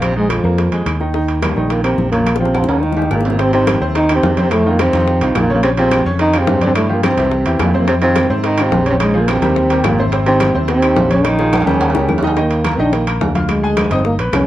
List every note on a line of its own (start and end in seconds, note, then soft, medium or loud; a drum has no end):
0.00 0.38 A#1 medium
0.00 0.15 C3 medium
0.00 0.17 C4 medium
0.00 0.11 F4 medium
0.00 0.11 F5 medium
0.00 high bongo medium
0.00 high conga soft
0.00 high timbale medium
0.00 claves medium
0.16 0.32 G#2 medium
0.16 0.39 G#3 medium
0.16 0.33 G#3 medium
0.16 0.39 G#4 medium
0.16 high conga soft
0.30 0.86 F2 medium
0.30 0.87 F3 medium
0.30 high bongo medium
0.30 high conga medium
0.30 high timbale medium
0.30 claves medium
0.44 0.70 F2 medium
0.44 0.67 A#3 medium
0.44 0.68 A#4 medium
0.44 high bongo soft
0.44 high conga soft
0.58 high bongo medium
0.58 high timbale medium
0.72 0.85 F2 medium
0.72 0.95 G#3 medium
0.72 0.95 G#4 medium
0.72 high timbale medium
0.86 1.51 D#2 medium
0.86 high bongo soft
0.86 low bongo medium
0.86 high timbale medium
0.86 claves medium
1.00 1.12 D#3 medium
1.00 1.12 D#4 medium
1.00 high bongo soft
1.00 high conga soft
1.14 1.37 D#3 medium
1.14 1.38 D#4 medium
1.14 high bongo medium
1.28 high timbale medium
1.42 1.72 G2 medium
1.42 1.72 G3 medium
1.42 1.54 A#3 medium
1.42 1.54 A#4 medium
1.42 high bongo medium
1.42 high conga medium
1.42 high timbale medium
1.42 claves medium
1.56 1.95 A#1 medium
1.56 1.80 D#3 medium
1.56 1.80 D#4 medium
1.56 high bongo soft
1.56 high conga soft
1.70 1.83 A#2 medium
1.70 1.84 A#3 medium
1.70 high bongo medium
1.70 high timbale medium
1.84 2.10 C3 medium
1.84 2.08 A#3 medium
1.84 2.10 C4 medium
1.84 2.08 A#4 medium
1.84 high timbale medium
1.84 claves medium
1.98 2.63 A#1 medium
1.98 high bongo soft
1.98 low bongo medium
1.98 high conga medium
2.11 2.41 A#2 medium
2.11 2.42 A#3 medium
2.11 2.36 C#4 medium
2.11 2.36 C#5 medium
2.11 high bongo soft
2.11 high conga medium
2.11 high timbale medium
2.26 high bongo medium
2.26 high conga soft
2.26 high timbale medium
2.26 claves medium
2.36 2.69 C3 medium
2.36 high bongo medium
2.40 2.64 F3 medium
2.40 2.70 C4 medium
2.40 2.64 F4 medium
2.40 high conga soft
2.45 high bongo loud
2.54 high bongo medium
2.54 high conga medium
2.54 high timbale medium
2.54 claves medium
2.64 low bongo medium
2.68 3.08 D#2 medium
2.68 2.83 C#3 medium
2.68 2.92 A#3 medium
2.68 2.84 C#4 medium
2.68 2.92 A#4 medium
2.68 high conga soft
2.68 high timbale medium
2.82 3.10 D#3 medium
2.82 3.11 D#4 medium
2.82 low bongo medium
2.82 high conga soft
2.92 low bongo loud
2.97 3.20 G3 medium
2.97 3.20 G4 medium
2.97 high conga soft
2.97 low timbale medium
3.02 low bongo medium
3.11 3.76 G#1 medium
3.11 3.29 A#2 medium
3.11 3.29 A#3 medium
3.11 low bongo medium
3.11 low timbale medium
3.11 claves medium
3.21 low bongo medium
3.25 3.37 C3 medium
3.25 3.37 C4 medium
3.25 high conga soft
3.25 low timbale medium
3.30 3.41 A#2 medium
3.30 3.43 A#3 medium
3.30 low bongo medium
3.39 3.50 C3 medium
3.39 3.53 C3 medium
3.39 3.51 C4 medium
3.39 3.54 C4 medium
3.39 3.51 C5 medium
3.39 high bongo medium
3.39 high timbale medium
3.53 3.79 C3 medium
3.53 3.76 D#3 medium
3.53 3.80 C4 loud
3.53 3.76 D#4 medium
3.53 3.77 G4 medium
3.53 high bongo soft
3.53 high timbale medium
3.67 high bongo medium
3.67 high conga loud
3.67 high timbale loud
3.67 low timbale medium
3.67 claves medium
3.81 4.20 D#2 medium
3.81 4.04 C3 medium
3.81 4.04 C4 medium
3.81 4.04 C5 medium
3.81 high bongo soft
3.81 high conga soft
3.95 4.13 D#3 medium
3.95 4.13 D#4 loud
3.95 high bongo medium
3.95 high timbale medium
4.09 4.33 D#3 medium
4.09 4.33 D#4 medium
4.09 4.33 G4 medium
4.09 high timbale medium
4.09 claves medium
4.15 4.40 C3 medium
4.15 4.41 C4 medium
4.23 4.88 F2 medium
4.23 high bongo medium
4.23 low bongo medium
4.23 high conga medium
4.23 low timbale medium
4.37 4.60 C3 medium
4.37 4.61 C4 medium
4.37 4.61 C5 medium
4.37 high bongo soft
4.37 high conga medium
4.37 high timbale medium
4.42 4.53 C3 medium
4.42 4.54 C4 medium
4.51 4.72 A2 medium
4.51 4.73 A3 medium
4.51 high bongo medium
4.51 high conga soft
4.51 high timbale medium
4.51 claves medium
4.65 4.89 D#3 medium
4.65 4.89 D#4 medium
4.65 4.89 F4 medium
4.65 high conga soft
4.70 4.79 A#2 medium
4.70 4.80 A#3 medium
4.79 5.37 C3 medium
4.79 5.38 C4 loud
4.79 high bongo medium
4.79 high conga medium
4.79 high timbale medium
4.79 low timbale medium
4.79 claves medium
4.93 5.20 F2 medium
4.93 5.17 D#3 medium
4.93 5.17 D#4 medium
4.93 5.17 F4 medium
4.93 high bongo soft
4.93 high conga medium
4.93 high timbale medium
5.07 high bongo medium
5.07 high conga soft
5.21 5.34 C2 medium
5.21 5.45 D#3 medium
5.21 5.45 D#4 medium
5.21 5.45 F4 medium
5.21 high bongo soft
5.21 high timbale medium
5.35 6.00 A#1 medium
5.35 5.53 A#2 medium
5.35 5.55 A#3 loud
5.35 high bongo medium
5.35 low bongo medium
5.35 high conga medium
5.35 high timbale medium
5.35 low timbale medium
5.35 claves medium
5.50 5.61 C#3 medium
5.50 5.61 C#4 medium
5.50 5.61 C#5 medium
5.50 high bongo soft
5.54 5.58 A#2 medium
5.54 5.60 A#3 medium
5.63 5.70 C3 medium
5.63 5.75 C#3 medium
5.63 5.71 C4 loud
5.63 5.75 C#4 medium
5.63 5.76 C#5 medium
5.63 high bongo medium
5.63 high timbale medium
5.77 6.04 C3 medium
5.77 6.01 F3 medium
5.77 6.04 C4 loud
5.77 6.01 F4 medium
5.77 6.01 G#4 medium
5.77 high bongo soft
5.77 high timbale medium
5.91 high bongo medium
5.91 high conga loud
5.91 high timbale loud
5.91 low timbale medium
5.91 claves medium
6.05 6.45 F2 medium
6.05 6.29 C#3 medium
6.05 6.29 C#4 medium
6.05 6.29 C#5 medium
6.05 high bongo soft
6.05 high conga soft
6.19 6.40 D#3 medium
6.19 6.41 D#4 loud
6.19 high bongo medium
6.19 high conga soft
6.19 high timbale medium
6.33 6.57 F3 medium
6.33 6.57 F4 medium
6.33 6.57 G#4 medium
6.33 high timbale medium
6.33 claves medium
6.38 6.66 C3 medium
6.38 6.66 C4 loud
6.47 7.12 G2 medium
6.47 high bongo medium
6.47 low bongo medium
6.47 high conga medium
6.47 low timbale medium
6.61 6.85 D3 medium
6.61 6.85 D4 medium
6.61 6.85 D5 medium
6.61 high bongo soft
6.61 high conga medium
6.61 high timbale medium
6.66 6.70 C3 medium
6.66 6.71 C4 medium
6.75 6.95 A2 medium
6.75 6.96 A3 medium
6.75 high bongo medium
6.75 high conga soft
6.75 high timbale medium
6.75 claves medium
6.89 7.12 F3 medium
6.89 7.13 F4 medium
6.89 7.13 G4 medium
6.89 high conga soft
6.94 7.03 A#2 medium
6.94 7.03 A#3 medium
7.03 7.56 C3 medium
7.03 7.56 C4 loud
7.03 high bongo medium
7.03 high conga loud
7.03 high timbale medium
7.03 low timbale medium
7.03 claves medium
7.17 7.44 C2 medium
7.17 7.41 E3 medium
7.17 7.41 E4 medium
7.17 7.41 G4 medium
7.17 high bongo soft
7.17 high conga medium
7.17 high timbale medium
7.32 high bongo medium
7.32 high conga soft
7.46 7.59 E2 medium
7.46 7.69 E3 medium
7.46 7.69 E4 medium
7.46 7.69 G4 medium
7.46 high bongo soft
7.46 high timbale medium
7.59 8.24 F2 medium
7.59 7.77 A#2 medium
7.59 7.78 A#3 medium
7.59 high bongo medium
7.59 low bongo medium
7.59 high conga medium
7.59 high timbale medium
7.59 low timbale medium
7.59 claves medium
7.74 7.85 C3 medium
7.74 7.85 C4 medium
7.74 7.86 C5 medium
7.74 high bongo soft
7.74 high conga medium
7.78 7.87 A#2 medium
7.78 7.88 A#3 medium
7.87 7.94 C3 medium
7.87 8.00 C3 medium
7.87 8.00 C4 medium
7.87 7.95 C4 medium
7.87 8.00 C5 medium
7.87 high bongo medium
7.87 high timbale medium
8.02 8.28 C3 medium
8.02 8.25 D#3 medium
8.02 8.29 C4 loud
8.02 8.25 D#4 medium
8.02 8.25 F4 medium
8.02 high bongo soft
8.02 high conga soft
8.02 high timbale medium
8.16 high bongo medium
8.16 high conga loud
8.16 high timbale loud
8.16 low timbale medium
8.16 claves medium
8.30 8.69 G#2 medium
8.30 8.53 C3 medium
8.30 8.53 C4 medium
8.30 8.53 C5 medium
8.30 high bongo soft
8.30 high conga soft
8.44 8.63 D#3 medium
8.44 8.65 D#4 loud
8.44 high bongo medium
8.44 high conga soft
8.44 high timbale medium
8.58 8.81 D#3 medium
8.58 8.81 D#4 medium
8.58 8.81 F4 medium
8.58 high conga soft
8.58 high timbale medium
8.58 claves medium
8.62 8.89 C3 medium
8.62 8.91 C4 medium
8.72 9.37 A#1 medium
8.72 high bongo medium
8.72 low bongo medium
8.72 high conga medium
8.72 low timbale medium
8.86 9.09 C#3 medium
8.86 9.09 C#4 medium
8.86 9.09 C#5 medium
8.86 high bongo soft
8.86 high conga medium
8.86 high timbale medium
8.90 8.94 C3 medium
8.90 8.96 C4 medium
8.99 9.19 G#2 medium
8.99 9.22 G#3 medium
8.99 high bongo medium
8.99 high conga soft
8.99 high timbale loud
8.99 claves medium
9.14 9.37 F3 medium
9.14 9.37 F4 medium
9.14 9.37 G#4 medium
9.14 high conga soft
9.18 9.29 A#2 medium
9.18 9.32 A#3 medium
9.28 9.85 C3 medium
9.28 9.88 C4 medium
9.28 high bongo medium
9.28 high conga loud
9.28 high timbale loud
9.28 low timbale medium
9.28 claves medium
9.42 9.81 D#2 medium
9.42 9.65 G3 medium
9.42 9.65 G4 medium
9.42 9.65 A#4 medium
9.42 high bongo soft
9.42 high conga medium
9.42 high timbale medium
9.56 high bongo medium
9.56 high conga soft
9.70 9.93 G3 medium
9.70 9.94 G4 medium
9.70 9.94 A#4 medium
9.70 high bongo soft
9.70 high timbale medium
9.84 10.49 G#1 medium
9.84 10.03 A#2 medium
9.84 10.04 A#3 medium
9.84 high bongo medium
9.84 low bongo medium
9.84 high conga medium
9.84 high timbale medium
9.84 low timbale medium
9.84 claves medium
9.99 10.10 C3 medium
9.99 10.10 C4 medium
9.99 10.11 C5 medium
9.99 high bongo soft
9.99 high conga medium
10.12 10.24 C3 medium
10.12 10.24 C4 medium
10.12 10.24 C5 medium
10.12 high bongo medium
10.12 high conga soft
10.12 high timbale medium
10.26 10.52 C3 medium
10.26 10.50 D#3 medium
10.26 10.53 C4 loud
10.26 10.50 D#4 medium
10.26 10.50 G4 medium
10.26 high bongo soft
10.26 high timbale medium
10.40 high bongo medium
10.40 high conga loud
10.40 high timbale loud
10.40 low timbale medium
10.40 claves medium
10.54 10.94 D#2 medium
10.54 10.77 C3 medium
10.54 10.78 C4 medium
10.54 10.78 C5 medium
10.54 high bongo soft
10.54 high conga soft
10.68 11.26 C3 medium
10.68 11.27 C4 loud
10.68 high bongo medium
10.68 high timbale medium
10.82 11.06 D#3 medium
10.82 11.06 D#4 medium
10.82 11.06 G4 medium
10.82 high timbale medium
10.82 claves medium
10.96 11.61 A#1 medium
10.96 high bongo medium
10.96 low bongo medium
10.96 high conga medium
10.96 low timbale medium
11.10 11.33 C#3 medium
11.10 11.34 C#4 medium
11.10 11.34 C#5 medium
11.10 high bongo soft
11.10 high conga medium
11.10 high timbale medium
11.24 11.67 D#3 medium
11.24 11.69 D#4 medium
11.24 high bongo loud
11.24 high conga soft
11.24 high timbale medium
11.24 claves medium
11.39 11.62 F3 medium
11.39 11.62 F4 medium
11.39 11.62 G#4 medium
11.39 high bongo medium
11.53 high conga loud
11.53 high timbale medium
11.53 claves medium
11.62 12.22 C#3 medium
11.62 high timbale medium
11.66 11.93 D#2 medium
11.66 11.89 G3 medium
11.66 12.23 C#4 medium
11.66 11.90 G4 medium
11.66 11.90 A#4 medium
11.66 high conga medium
11.81 high conga soft
11.81 high timbale medium
11.90 low timbale medium
11.94 12.08 C#2 medium
11.94 12.18 G3 medium
11.94 12.18 G4 medium
11.94 12.18 A#4 medium
11.94 low bongo medium
11.99 low timbale medium
12.08 12.73 D#2 medium
12.08 low bongo loud
12.08 high conga medium
12.08 low timbale medium
12.08 claves medium
12.18 low timbale loud
12.23 12.34 D#3 medium
12.23 12.35 D#4 medium
12.23 12.35 D#5 medium
12.23 low bongo medium
12.27 low timbale medium
12.37 12.60 D#3 medium
12.37 12.82 A#3 medium
12.37 12.60 D#4 medium
12.37 12.60 D#5 medium
12.37 high bongo medium
12.37 high conga soft
12.37 high timbale medium
12.50 high bongo soft
12.50 high conga soft
12.50 high timbale medium
12.64 12.76 A#3 medium
12.64 12.77 A#4 medium
12.64 12.77 A#5 medium
12.64 high bongo medium
12.64 high conga loud
12.64 high timbale medium
12.64 low timbale medium
12.64 claves medium
12.79 13.18 A#1 medium
12.79 13.02 D#3 medium
12.79 12.95 D4 medium
12.79 13.02 D#4 medium
12.79 13.02 D#5 medium
12.79 high bongo soft
12.79 high conga soft
12.93 13.07 A#3 medium
12.93 high bongo medium
12.93 high conga soft
12.93 high timbale medium
13.07 13.30 A#3 medium
13.07 13.30 A#4 medium
13.07 13.31 A#5 medium
13.07 high conga soft
13.07 high timbale medium
13.07 claves medium
13.21 13.86 D2 medium
13.21 high bongo medium
13.21 low bongo medium
13.21 high conga medium
13.21 low timbale medium
13.35 13.58 F4 medium
13.35 13.58 F5 medium
13.35 13.58 F6 medium
13.35 high bongo soft
13.35 high conga medium
13.35 high timbale medium
13.49 13.89 G#3 medium
13.49 high bongo medium
13.49 high conga soft
13.49 high timbale medium
13.49 claves medium
13.63 13.86 G#3 medium
13.63 13.86 G#4 medium
13.63 13.87 G#5 medium
13.77 high bongo medium
13.77 high conga loud
13.77 high timbale medium
13.77 low timbale medium
13.77 claves medium
13.91 14.17 G1 medium
13.91 14.05 C4 medium
13.91 14.14 D#4 medium
13.91 14.14 D#5 medium
13.91 14.15 D#6 medium
13.91 high conga medium
13.91 high timbale medium
14.05 14.14 A#3 medium
14.05 high bongo medium
14.05 high conga soft
14.19 14.32 A#1 medium
14.19 14.42 B3 medium
14.19 14.43 B4 medium
14.19 14.43 B5 medium
14.19 high bongo soft
14.19 high conga soft
14.19 high timbale medium
14.32 14.47 C2 medium
14.32 14.47 C#4 medium
14.32 high bongo medium
14.32 low bongo medium
14.32 high conga medium
14.32 high timbale medium
14.32 low timbale medium
14.32 claves medium